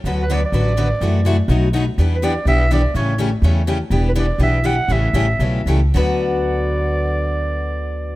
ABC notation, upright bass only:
X:1
M:4/4
L:1/8
Q:"Swing" 1/4=249
K:D
V:1 name="Upright bass" clef=bass
D,,4 A,,,4 | F,,4 B,,,4 | E,,4 B,,,4 | A,,,4 E,,4 |
E,,,4 B,,,4 | A,,,2 A,,,2 B,,,2 C,,2 | D,,8- | D,,8 |]